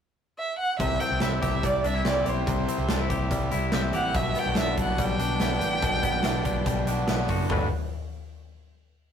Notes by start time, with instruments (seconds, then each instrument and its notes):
0.39 violin E5
0.58 violin F#5
0.79 picked electric bass C2, overdriven electric guitar C3 G3 C4 E4 G4, clean electric guitar C3, violin E5, kick, closed hi-hat
1.00 clean electric guitar C4, violin G5, closed hi-hat
1.10 picked electric bass C2, overdriven electric guitar C3 G3 C4 E4 G4
1.20 picked electric bass C2, clean electric guitar E4, violin E5, snare, closed hi-hat
1.42 picked electric bass C2, overdriven electric guitar G3 C4 E4 G4, clean electric guitar G4, violin E5, kick, closed hi-hat
1.63 picked electric bass C2, clean electric guitar G3, violin D5, kick, closed hi-hat
1.83 picked electric bass C2, overdriven electric guitar C3 G3 C4, clean electric guitar D4, violin E5, closed hi-hat
1.87 overdriven electric guitar E4 G4
1.94 clean electric guitar E4
2.04 picked electric bass C2, clean electric guitar C4, violin D5, snare, closed hi-hat
2.16 overdriven electric guitar C4 E4 G4
2.25 picked electric bass B1, clean electric guitar G4, violin C5, closed hi-hat
2.47 picked electric bass C2, clean electric guitar C3, overdriven electric guitar C3 G3 C4 E4 G4, violin C5, kick, closed hi-hat
2.68 clean electric guitar C4, closed hi-hat
2.78 picked electric bass C2, overdriven electric guitar C3 G3 C4 E4 G4
2.88 picked electric bass C2, clean electric guitar D4, snare, closed hi-hat
3.00 clean electric guitar E4
3.09 picked electric bass C2, overdriven electric guitar G3 C4 E4 G4, clean electric guitar G4, kick, closed hi-hat
3.31 picked electric bass C2, clean electric guitar G3, kick, closed hi-hat
3.50 picked electric bass C2, overdriven electric guitar C3 G3 C4 E4 G4, clean electric guitar E4, closed hi-hat
3.72 picked electric bass C2, clean electric guitar C4, violin E5, snare, closed hi-hat
3.83 overdriven electric guitar C4 E4 G4
3.93 picked electric bass A1, clean electric guitar G4, violin F#5, closed hi-hat
4.14 picked electric bass B1, overdriven electric guitar B2 G3 B3 D4 F#4, clean electric guitar B2, violin E5, kick, closed hi-hat
4.35 clean electric guitar B3, violin G5, closed hi-hat
4.46 picked electric bass B1, overdriven electric guitar B2 G3 B3 D4 F#4
4.55 picked electric bass B1, clean electric guitar D4, snare, closed hi-hat
4.60 violin E5
4.76 picked electric bass B1, overdriven electric guitar G3 B3 D4 F#4, kick, closed hi-hat
4.82 violin F#5
4.98 picked electric bass B1, clean electric guitar G3, violin G5, kick, closed hi-hat
5.18 picked electric bass B1, overdriven electric guitar B2 G3 B3 D4, clean electric guitar D4, closed hi-hat
5.40 picked electric bass B1, clean electric guitar B3, snare, closed hi-hat
5.53 overdriven electric guitar B3 D4
5.61 picked electric bass A1, closed hi-hat
5.82 picked electric bass B1, overdriven electric guitar B2 G3 B3 D4, clean electric guitar B2, kick, closed hi-hat
6.03 clean electric guitar B3, kick, closed hi-hat
6.13 picked electric bass B1, overdriven electric guitar B2 G3 B3 D4
6.23 picked electric bass B1, clean electric guitar D4, snare, closed hi-hat
6.44 picked electric bass B1, overdriven electric guitar G3 B3 D4, kick, closed hi-hat
6.66 picked electric bass B1, clean electric guitar G3, kick, closed hi-hat
6.86 picked electric bass B1, overdriven electric guitar B2 G3 B3 D4 F#4, clean electric guitar D4, closed hi-hat
7.07 picked electric bass B1, clean electric guitar B3, snare, closed hi-hat
7.17 overdriven electric guitar B3 D4 F#4
7.28 picked electric bass F#1, clean electric guitar F#4, kick, open hi-hat
7.49 picked electric bass G1, overdriven electric guitar G3 A3 D4 F#4 B4, clean electric guitar G3 A3 D4 F#4 B4, kick, floor tom